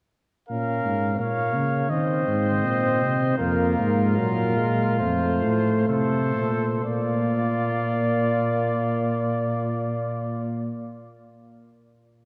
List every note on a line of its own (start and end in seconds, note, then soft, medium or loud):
0.48 0.82 A#2 medium
0.48 1.21 C#4 medium
0.48 1.15 A#4 medium
0.48 1.14 F5 medium
0.85 1.19 G#2 medium
1.19 1.56 A#2 medium
1.19 1.89 A#3 medium
1.19 1.89 C#5 medium
1.19 1.91 F5 medium
1.55 1.92 C#3 medium
1.90 2.26 D#3 medium
1.90 3.35 C4 medium
1.90 3.36 C5 medium
1.90 3.37 D#5 medium
2.27 2.66 G#2 medium
2.64 3.03 A#2 medium
3.02 3.39 C3 medium
3.38 3.77 F2 medium
3.38 4.17 A#3 medium
3.38 5.84 F4 medium
3.38 4.15 A#4 medium
3.79 4.20 G#2 medium
4.15 5.03 A#2 medium
4.15 4.58 F#3 medium
4.15 4.98 A#4 medium
4.57 5.01 G#3 medium
4.99 5.46 F2 medium
4.99 6.84 A3 medium
4.99 5.86 C5 medium
5.44 5.88 A2 medium
5.88 6.35 C3 medium
5.88 6.66 A4 medium
5.88 6.82 C5 medium
6.36 6.84 A#2 medium
6.83 10.72 A#2 medium
6.83 10.71 A#3 medium
6.83 10.69 F4 medium
6.83 10.71 D5 medium